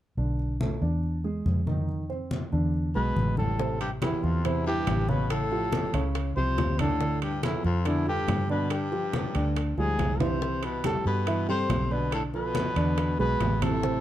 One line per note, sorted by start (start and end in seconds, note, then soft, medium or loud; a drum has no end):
0.17 0.78 B1 medium
0.17 0.53 D3 medium
0.17 0.53 D4 medium
0.17 high conga soft
0.39 high conga soft
0.60 0.78 A3 medium
0.60 0.78 A4 medium
0.60 high conga medium
0.81 1.42 E2 medium
0.81 1.17 D4 medium
0.81 1.17 D5 medium
0.81 high conga soft
1.03 high conga soft
1.24 1.59 G#3 medium
1.24 1.60 G#4 medium
1.24 high conga soft
1.46 2.47 F2 medium
1.46 high conga medium
1.67 2.02 D#3 medium
1.67 2.02 D#4 medium
1.67 high conga medium
1.89 high conga soft
2.10 2.45 C4 medium
2.10 2.45 C5 medium
2.10 high conga soft
2.31 high conga medium
2.52 2.92 E2 medium
2.52 2.88 D3 medium
2.52 2.88 D4 medium
2.52 high conga soft
2.74 high conga soft
2.95 3.15 B1 medium
2.95 3.35 B2 medium
2.95 3.30 G#3 medium
2.95 3.31 G#4 medium
2.95 3.35 B4 loud
2.95 high conga soft
3.16 4.17 A1 medium
3.16 high conga medium
3.37 3.78 A2 medium
3.37 3.55 G3 medium
3.37 3.56 G4 medium
3.37 3.78 A4 loud
3.37 high conga medium
3.59 3.94 C3 medium
3.59 3.95 C4 medium
3.59 3.95 C5 medium
3.59 high bongo medium
3.59 high conga soft
3.80 3.90 G2 medium
3.80 3.91 G4 medium
3.80 high bongo soft
3.80 high conga soft
3.80 high timbale medium
4.02 4.26 E2 medium
4.02 4.37 E3 medium
4.02 4.37 E4 medium
4.02 4.25 E4 medium
4.02 4.37 G4 medium
4.02 high bongo medium
4.02 high conga medium
4.02 high timbale medium
4.02 low timbale medium
4.23 4.83 E2 medium
4.23 4.47 F2 medium
4.23 4.47 F4 medium
4.23 high bongo soft
4.23 high conga soft
4.45 4.66 E2 medium
4.45 4.62 C3 medium
4.45 4.63 C4 medium
4.45 4.66 E4 medium
4.45 4.63 C5 medium
4.45 high bongo medium
4.45 high conga soft
4.45 high timbale medium
4.66 5.11 G2 medium
4.66 5.01 E3 medium
4.66 5.02 E4 medium
4.66 5.11 G4 loud
4.66 5.02 G4 medium
4.66 high conga soft
4.87 5.88 A1 medium
4.87 high bongo soft
4.87 low bongo medium
4.87 high conga medium
4.87 high timbale medium
4.87 low timbale medium
5.09 5.30 B2 medium
5.09 5.44 C#3 medium
5.09 5.44 C#4 medium
5.09 5.30 B4 medium
5.09 5.44 C#5 medium
5.09 high bongo soft
5.09 high conga medium
5.30 6.12 A2 medium
5.30 6.12 A4 loud
5.30 high bongo medium
5.30 high conga soft
5.30 high timbale medium
5.51 5.86 F3 medium
5.51 5.87 F4 medium
5.51 5.87 G4 medium
5.51 high bongo soft
5.51 high conga soft
5.72 high bongo medium
5.72 high conga medium
5.72 high timbale medium
5.72 low timbale medium
5.94 6.33 C#2 medium
5.94 6.29 C#3 medium
5.94 6.29 C#4 medium
5.94 6.29 C#5 medium
5.94 high bongo soft
5.94 high conga soft
5.94 high timbale medium
6.15 high bongo medium
6.15 high conga soft
6.15 high timbale medium
6.36 6.56 C2 medium
6.36 6.81 C3 medium
6.36 6.71 F3 medium
6.36 6.72 F4 medium
6.36 6.72 G4 medium
6.36 6.81 C5 loud
6.36 high conga soft
6.58 7.58 D2 medium
6.58 high bongo soft
6.58 low bongo medium
6.58 high conga medium
6.58 high timbale medium
6.58 low timbale medium
6.79 7.22 A2 medium
6.79 6.97 D3 medium
6.79 6.97 D4 medium
6.79 7.22 A4 loud
6.79 6.97 D5 medium
6.79 high bongo soft
6.79 high conga medium
6.79 high timbale loud
7.01 7.36 D3 medium
7.01 7.36 D4 medium
7.01 7.36 D5 medium
7.01 high bongo medium
7.01 high conga soft
7.22 7.42 G2 medium
7.22 7.42 G4 medium
7.22 high bongo soft
7.22 high conga soft
7.22 high timbale medium
7.43 7.63 E2 medium
7.43 7.78 F3 medium
7.43 7.63 E4 medium
7.43 7.78 F4 medium
7.43 7.78 A4 medium
7.43 high bongo medium
7.43 high conga medium
7.43 high timbale medium
7.43 low timbale medium
7.64 8.24 F2 medium
7.64 7.88 F2 medium
7.64 7.88 F4 medium
7.64 high bongo soft
7.64 high conga soft
7.85 8.07 E2 medium
7.85 8.03 D3 medium
7.85 8.03 D4 medium
7.85 8.08 E4 medium
7.85 8.04 D5 medium
7.85 high bongo medium
7.85 high conga soft
7.85 high timbale medium
8.07 8.47 G2 medium
8.07 8.42 F3 medium
8.07 8.42 F4 medium
8.07 8.47 G4 loud
8.07 8.42 A4 medium
8.07 high conga soft
8.28 9.29 G2 medium
8.28 high bongo soft
8.28 low bongo medium
8.28 high conga medium
8.28 high timbale medium
8.28 low timbale medium
8.49 8.73 B2 medium
8.49 8.84 D3 medium
8.49 8.85 D4 medium
8.49 8.73 B4 medium
8.49 8.85 D5 medium
8.49 high bongo soft
8.70 9.57 G2 medium
8.70 9.57 G4 medium
8.70 high bongo medium
8.70 high conga soft
8.70 high timbale medium
8.92 9.27 F3 medium
8.92 9.27 F4 medium
8.92 9.27 G4 medium
8.92 high bongo soft
8.92 high conga soft
9.13 high bongo medium
9.13 high conga medium
9.13 high timbale medium
9.13 low timbale medium
9.35 9.75 D2 medium
9.35 9.70 D3 medium
9.35 9.70 D4 medium
9.35 9.70 D5 medium
9.35 high bongo soft
9.35 high conga soft
9.35 high timbale medium
9.56 high bongo medium
9.56 high conga soft
9.56 high timbale medium
9.78 9.98 D2 medium
9.78 10.23 G#2 medium
9.78 10.13 F3 medium
9.78 10.13 G3 medium
9.78 10.13 F4 medium
9.78 10.23 G#4 loud
9.78 high conga soft
9.99 11.00 C2 medium
9.99 high bongo soft
9.99 low bongo medium
9.99 high conga medium
9.99 high timbale medium
9.99 low timbale medium
10.20 10.65 C3 medium
10.20 10.38 E3 medium
10.20 10.38 E4 medium
10.20 10.66 C5 loud
10.20 10.38 E5 medium
10.20 high bongo soft
10.20 high conga medium
10.20 high timbale medium
10.41 10.76 E3 medium
10.41 10.77 E4 medium
10.41 10.77 E5 medium
10.41 high bongo medium
10.41 high conga soft
10.63 10.84 B2 medium
10.63 10.85 B4 medium
10.63 high bongo soft
10.63 high conga soft
10.63 high timbale medium
10.84 11.05 A2 medium
10.84 11.19 G3 medium
10.84 11.20 G4 medium
10.84 11.20 A4 medium
10.84 11.05 A4 loud
10.84 high bongo medium
10.84 high conga medium
10.84 high timbale medium
10.84 low timbale medium
11.06 11.66 G2 loud
11.06 11.46 B2 medium
11.06 11.46 B4 medium
11.06 high bongo soft
11.06 high conga soft
11.27 11.44 E3 medium
11.27 11.45 E4 medium
11.27 11.45 E5 medium
11.27 high bongo medium
11.27 high conga soft
11.27 high timbale medium
11.48 11.94 C3 medium
11.48 11.83 G3 medium
11.48 11.83 G4 medium
11.48 11.84 A4 medium
11.48 11.94 C5 loud
11.48 high conga soft
11.69 12.70 B1 medium
11.69 high bongo soft
11.69 low bongo medium
11.69 high conga medium
11.69 high timbale medium
11.69 low timbale medium
11.91 12.13 B2 medium
11.91 12.26 D3 medium
11.91 12.26 D4 medium
11.91 12.13 B4 medium
11.91 12.26 D5 medium
11.91 high bongo soft
12.12 12.23 A2 medium
12.12 12.23 A4 medium
12.12 high bongo medium
12.12 high conga soft
12.12 high timbale medium
12.34 13.16 B2 medium
12.34 12.69 F3 medium
12.34 12.69 F4 medium
12.34 12.69 A4 medium
12.34 13.16 B4 loud
12.34 high bongo soft
12.34 high conga soft
12.55 high bongo medium
12.55 high conga medium
12.55 high timbale medium
12.55 low timbale medium
12.76 13.16 E2 medium
12.76 13.11 D3 medium
12.76 13.11 D4 medium
12.76 13.12 D5 medium
12.76 high bongo soft
12.76 high conga soft
12.76 high timbale medium
12.98 high bongo medium
12.98 high conga soft
12.98 high timbale medium
13.19 13.39 B1 medium
13.19 13.64 B2 medium
13.19 13.54 G#3 medium
13.19 13.54 G#4 medium
13.19 13.54 B4 medium
13.19 13.65 B4 loud
13.19 high conga soft
13.40 14.01 A1 medium
13.40 high bongo soft
13.40 low bongo medium
13.40 high conga medium
13.40 high timbale medium
13.40 low timbale medium
13.62 14.01 A2 medium
13.62 13.79 C3 medium
13.62 13.79 C4 medium
13.62 14.01 A4 loud
13.62 13.80 C5 medium
13.62 high bongo soft
13.62 high conga medium
13.62 high timbale medium
13.83 14.01 C3 medium
13.83 14.01 C4 medium
13.83 14.01 C5 medium
13.83 high bongo medium
13.83 high conga soft